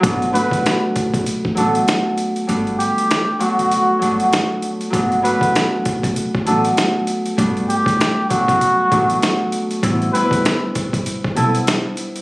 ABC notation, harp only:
X:1
M:4/4
L:1/8
Q:"Swing 16ths" 1/4=98
K:G
V:1 name="Harp"
[F,A,B,D] [F,A,B,D]4 [F,A,B,D]3 | [G,A,B,D]2 z [F,A,B,D]2 [F,A,B,D]3 | [F,A,B,D] [F,A,B,D]4 [F,A,B,D]3 | [G,A,B,D]2 z [F,A,B,D]2 [F,A,B,D]3 |
[G,B,CE] [G,B,CE]4 [G,B,CE]3 |]